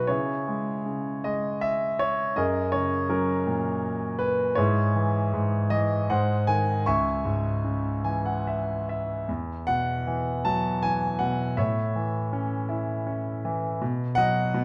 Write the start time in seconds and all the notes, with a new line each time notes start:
Already playing: B2
0.07 C#3 E4 G#4 C#5
0.48 G#3
0.86 C#3
1.24 G#3 D#5
1.61 E5
1.99 C#5
2.36 F#2 G#4 A#4 D#5
2.72 C#3 C#5
3.10 F#3 C#4 A#4
3.47 A#2
4.19 B4
4.55 G#2 E4 G#4 C#5
4.96 E3
5.34 G#2
5.70 E3 D#5
6.10 G#2 C5 D#5 F#5
6.47 D#3 G#5
6.86 C#2 E5 G#5 C#6
7.25 G#2
7.65 C#3
8.04 E3 G#5
8.26 F#5
8.47 E5
8.89 E5
9.29 E2
9.67 B2 F#5
10.07 E3
10.45 F#3 A5
10.82 E3 G#5
11.19 B2 F#5
11.57 A2 C#5 E5
11.96 E3
12.33 C#4
12.69 E4
13.07 C#4
13.45 E3
13.82 B2
14.15 F#3 D#5 F#5
14.54 B2